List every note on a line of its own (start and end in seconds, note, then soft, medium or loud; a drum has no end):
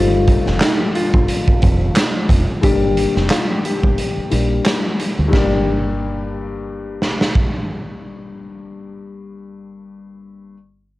0.00 0.35 G1 loud
0.00 2.58 G2 medium
0.00 2.59 G3 medium
0.00 2.59 A3 medium
0.00 2.60 D#4 medium
0.00 0.57 F4 loud
0.00 2.60 C5 medium
0.27 kick loud
0.27 closed hi-hat medium
0.46 0.58 F1 medium
0.46 snare soft
0.60 0.79 D#4 medium
0.60 snare loud
0.60 clap medium
0.60 closed hi-hat medium
0.80 0.93 G4 medium
0.95 2.60 F4 medium
0.95 closed hi-hat medium
1.14 1.25 G1 loud
1.14 kick loud
1.28 closed hi-hat medium
1.48 kick medium
1.62 1.89 F1 loud
1.62 kick medium
1.62 closed hi-hat medium
1.95 snare loud
1.95 clap medium
1.95 closed hi-hat loud
2.29 2.45 F1 medium
2.29 kick medium
2.29 closed hi-hat medium
2.62 3.05 G1 loud
2.62 4.28 G2 medium
2.62 4.28 G3 medium
2.62 2.71 A3 medium
2.62 4.29 D4 medium
2.62 3.27 G4 loud
2.62 kick loud
2.62 closed hi-hat loud
2.66 4.30 D5 medium
2.70 4.30 A#3 medium
2.97 closed hi-hat medium
3.16 3.28 F1 medium
3.16 snare soft
3.30 3.48 F4 medium
3.30 snare loud
3.30 clap medium
3.30 closed hi-hat medium
3.51 3.63 G4 medium
3.65 4.62 G4 medium
3.65 closed hi-hat medium
3.83 3.95 G1 medium
3.83 kick medium
3.98 closed hi-hat medium
4.18 muted fingered electric bass stroke soft
4.30 4.59 A#1 medium
4.30 5.26 G2 medium
4.30 5.29 G3 soft
4.30 5.31 A#3 soft
4.30 5.33 D4 soft
4.30 5.33 D5 medium
4.30 closed hi-hat medium
4.65 snare loud
4.65 clap medium
4.65 closed hi-hat loud
5.00 closed hi-hat medium
5.19 5.30 D2 medium
5.28 9.33 G2 medium
5.28 9.36 G3 medium
5.33 9.39 G1 loud
5.33 9.38 A#3 medium
5.33 9.41 D4 medium
5.33 7.31 G4 medium
5.33 kick loud
5.33 snare medium
5.38 9.43 D5 medium
7.02 snare medium
7.21 snare medium
7.35 kick medium